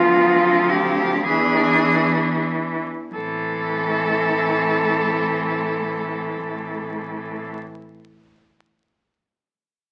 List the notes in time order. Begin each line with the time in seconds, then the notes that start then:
Already playing: D2 F3 B3 F4
0.45 C4
0.69 G4
1.26 E2 E3 D4 G#4
3.14 A2 E3 C4 A4